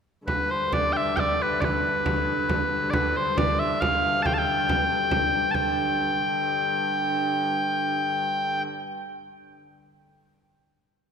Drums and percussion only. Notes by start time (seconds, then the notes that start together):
0.28 frame drum
0.73 frame drum
1.17 frame drum
1.62 frame drum
2.06 frame drum
2.49 frame drum
2.93 frame drum
3.38 frame drum
3.82 frame drum
4.25 frame drum
4.48 frame drum
4.69 frame drum
4.91 frame drum
5.11 frame drum
5.55 frame drum